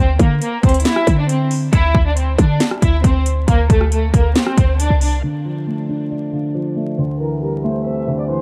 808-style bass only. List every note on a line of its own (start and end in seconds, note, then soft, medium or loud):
0.00 0.19 D2 loud
0.19 0.40 D3 loud
0.63 0.84 D2 loud
1.07 1.70 D3 loud
1.73 1.94 D2 loud
1.95 2.37 D2 loud
2.38 2.60 D3 loud
2.82 3.03 D2 loud
3.04 3.46 D2 loud
3.48 3.69 D2 loud
3.70 4.12 D2 loud
4.14 4.35 D2 loud
4.58 4.89 D2 loud
4.90 5.22 C2 loud